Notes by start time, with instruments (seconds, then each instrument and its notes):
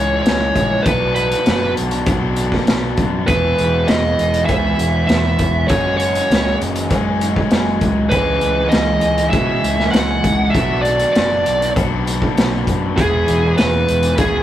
Already playing: picked electric bass C#2, overdriven electric guitar C#3 E3 G#3 C#4 G#4, lead electric guitar C#5
0.22 lead electric guitar C#5, closed hi-hat
0.27 picked electric bass C#2, snare
0.56 picked electric bass A#1, kick, closed hi-hat
0.82 picked electric bass B1, overdriven electric guitar B2 F#3, lead electric guitar B4, kick, closed hi-hat
0.87 overdriven electric guitar B3 D4 F#4
1.15 lead electric guitar B4, closed hi-hat
1.32 closed hi-hat
1.46 picked electric bass F#1, snare, closed hi-hat
1.77 picked electric bass B1, closed hi-hat
1.91 closed hi-hat
2.06 picked electric bass B1, overdriven electric guitar F#3 B3 D4 F#4, kick, closed hi-hat
2.36 closed hi-hat
2.52 kick, snare
2.67 picked electric bass B1, snare, closed hi-hat
2.97 picked electric bass F#2, kick, closed hi-hat
3.27 picked electric bass E1, overdriven electric guitar E3 G#3 B3 E4 G#4, lead electric guitar B4, kick, closed hi-hat
3.58 picked electric bass E1, closed hi-hat
3.87 picked electric bass E1, lead electric guitar D#5, snare, closed hi-hat
4.19 picked electric bass E1, closed hi-hat
4.34 closed hi-hat
4.45 picked electric bass C#2, overdriven electric guitar E3, lead electric guitar E5, kick, closed hi-hat
4.50 overdriven electric guitar B3 E4 G#4
4.79 picked electric bass E1, closed hi-hat
5.07 picked electric bass E1, lead electric guitar E5, snare, closed hi-hat
5.39 picked electric bass E1, kick, closed hi-hat
5.68 picked electric bass F#1, overdriven electric guitar F#3 G#3 C#4 G#4, lead electric guitar C#5, kick, closed hi-hat
5.72 overdriven electric guitar F#4
5.97 lead electric guitar C#5, closed hi-hat
6.15 closed hi-hat
6.30 picked electric bass C#2, snare, closed hi-hat
6.61 picked electric bass F#1, closed hi-hat
6.76 closed hi-hat
6.90 picked electric bass F#1, overdriven electric guitar F#3 G#3 C#4 G#4, kick, closed hi-hat
7.21 closed hi-hat
7.36 kick
7.51 picked electric bass F#1, snare, closed hi-hat
7.81 picked electric bass C#2, kick, closed hi-hat
8.10 picked electric bass C#2, overdriven electric guitar C#3 E3 G#3 C#4 G#4, lead electric guitar B4, kick, closed hi-hat
8.41 picked electric bass C#2, closed hi-hat
8.69 lead electric guitar D#5, snare, closed hi-hat
8.73 picked electric bass C#2
9.01 picked electric bass C#2, closed hi-hat
9.18 closed hi-hat
9.30 picked electric bass B2, overdriven electric guitar E3 G#3 C#4, lead electric guitar E5, kick, closed hi-hat
9.34 overdriven electric guitar G#4
9.64 picked electric bass C#2, closed hi-hat
9.79 snare
9.91 picked electric bass C#2, lead electric guitar F#5, snare, closed hi-hat
10.24 picked electric bass C#2, kick, closed hi-hat
10.50 overdriven electric guitar B2, lead electric guitar E5
10.55 picked electric bass B1, overdriven electric guitar F#3 B3 D4 F#4, kick, closed hi-hat
10.82 lead electric guitar D5, closed hi-hat
11.00 closed hi-hat
11.13 lead electric guitar D5, snare, closed hi-hat
11.17 picked electric bass F#1
11.46 picked electric bass B1, closed hi-hat
11.62 closed hi-hat
11.76 picked electric bass B1, overdriven electric guitar F#3 B3 D4 F#4, kick, closed hi-hat
12.07 closed hi-hat
12.22 kick
12.37 picked electric bass B1, snare, closed hi-hat
12.67 picked electric bass F#2, kick, closed hi-hat
12.96 picked electric bass E1, overdriven electric guitar E3 G#3 B3 E4 G#4, lead electric guitar G#4, kick, closed hi-hat
13.28 picked electric bass E1, closed hi-hat
13.58 picked electric bass E1, lead electric guitar B4, snare, closed hi-hat
13.88 picked electric bass E1, closed hi-hat
14.03 closed hi-hat
14.18 picked electric bass C#2, overdriven electric guitar E3 B3 E4 G#4, lead electric guitar G#4, kick, closed hi-hat